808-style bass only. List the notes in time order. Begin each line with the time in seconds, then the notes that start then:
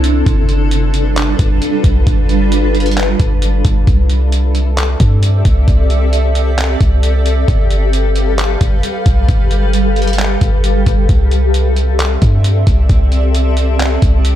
Already playing: C2
0.26 G1
1.39 G1
1.84 B1
2.07 G1
3.20 G1
3.65 G1
3.87 C2
5.00 G2
5.45 C2
5.68 C2
6.81 C2
7.48 G1
8.61 G1
9.06 B1
9.29 G1
10.41 G1
10.87 G1
11.09 C2
12.22 G2
12.67 C2
12.90 C2
14.02 C2